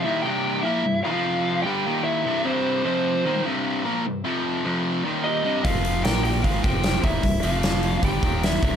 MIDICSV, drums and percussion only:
0, 0, Header, 1, 2, 480
1, 0, Start_track
1, 0, Tempo, 398936
1, 1029, Time_signature, 4, 2, 24, 8
1, 10540, End_track
2, 0, Start_track
2, 0, Title_t, "Drums"
2, 6794, Note_on_c, 9, 46, 64
2, 6795, Note_on_c, 9, 36, 90
2, 6914, Note_off_c, 9, 46, 0
2, 6915, Note_off_c, 9, 36, 0
2, 7033, Note_on_c, 9, 46, 46
2, 7153, Note_off_c, 9, 46, 0
2, 7273, Note_on_c, 9, 46, 62
2, 7285, Note_on_c, 9, 38, 108
2, 7394, Note_off_c, 9, 46, 0
2, 7406, Note_off_c, 9, 38, 0
2, 7520, Note_on_c, 9, 46, 44
2, 7640, Note_off_c, 9, 46, 0
2, 7751, Note_on_c, 9, 46, 56
2, 7753, Note_on_c, 9, 36, 85
2, 7872, Note_off_c, 9, 46, 0
2, 7873, Note_off_c, 9, 36, 0
2, 7992, Note_on_c, 9, 36, 107
2, 7997, Note_on_c, 9, 46, 46
2, 8112, Note_off_c, 9, 36, 0
2, 8117, Note_off_c, 9, 46, 0
2, 8221, Note_on_c, 9, 46, 63
2, 8234, Note_on_c, 9, 38, 110
2, 8342, Note_off_c, 9, 46, 0
2, 8354, Note_off_c, 9, 38, 0
2, 8461, Note_on_c, 9, 46, 48
2, 8466, Note_on_c, 9, 36, 104
2, 8582, Note_off_c, 9, 46, 0
2, 8586, Note_off_c, 9, 36, 0
2, 8700, Note_on_c, 9, 46, 71
2, 8704, Note_on_c, 9, 36, 86
2, 8820, Note_off_c, 9, 46, 0
2, 8825, Note_off_c, 9, 36, 0
2, 8939, Note_on_c, 9, 46, 50
2, 9059, Note_off_c, 9, 46, 0
2, 9180, Note_on_c, 9, 46, 67
2, 9192, Note_on_c, 9, 38, 109
2, 9300, Note_off_c, 9, 46, 0
2, 9313, Note_off_c, 9, 38, 0
2, 9417, Note_on_c, 9, 46, 48
2, 9537, Note_off_c, 9, 46, 0
2, 9657, Note_on_c, 9, 46, 60
2, 9660, Note_on_c, 9, 36, 93
2, 9778, Note_off_c, 9, 46, 0
2, 9781, Note_off_c, 9, 36, 0
2, 9900, Note_on_c, 9, 36, 108
2, 9900, Note_on_c, 9, 46, 53
2, 10020, Note_off_c, 9, 46, 0
2, 10021, Note_off_c, 9, 36, 0
2, 10145, Note_on_c, 9, 46, 62
2, 10157, Note_on_c, 9, 38, 98
2, 10265, Note_off_c, 9, 46, 0
2, 10277, Note_off_c, 9, 38, 0
2, 10379, Note_on_c, 9, 36, 98
2, 10382, Note_on_c, 9, 46, 48
2, 10499, Note_off_c, 9, 36, 0
2, 10502, Note_off_c, 9, 46, 0
2, 10540, End_track
0, 0, End_of_file